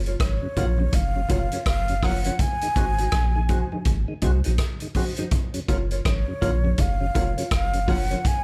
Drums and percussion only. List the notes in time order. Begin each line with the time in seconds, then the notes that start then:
0.06 closed hi-hat
0.19 kick, cross-stick, closed hi-hat, high conga
0.57 kick, closed hi-hat, high conga, low conga
0.78 high conga
0.92 kick, closed hi-hat, high conga, low conga
1.29 kick, closed hi-hat, low conga
1.52 closed hi-hat
1.66 kick, cross-stick, closed hi-hat
1.88 closed hi-hat
2.03 kick, cross-stick, open hi-hat, high conga
2.24 closed hi-hat, high conga
2.39 kick, closed hi-hat, low conga
2.61 closed hi-hat
2.76 kick, closed hi-hat, low conga
2.98 closed hi-hat
3.12 kick, cross-stick, closed hi-hat, high conga
3.49 kick, closed hi-hat, high conga, low conga
3.72 high conga
3.85 kick, closed hi-hat, high conga, low conga
4.22 kick, closed hi-hat, low conga
4.44 closed hi-hat
4.58 kick, cross-stick, closed hi-hat
4.80 closed hi-hat
4.94 kick, open hi-hat, high conga
5.16 closed hi-hat, high conga
5.31 kick, closed hi-hat, low conga
5.54 closed hi-hat
5.68 kick, closed hi-hat, low conga
5.91 closed hi-hat
6.05 kick, cross-stick, closed hi-hat, high conga
6.42 kick, closed hi-hat, high conga, low conga
6.64 high conga
6.78 kick, closed hi-hat, high conga, low conga
7.15 kick, closed hi-hat, low conga
7.38 closed hi-hat
7.51 kick, cross-stick, closed hi-hat
7.73 closed hi-hat
7.88 kick, open hi-hat, high conga
8.10 closed hi-hat, high conga
8.25 kick, closed hi-hat, low conga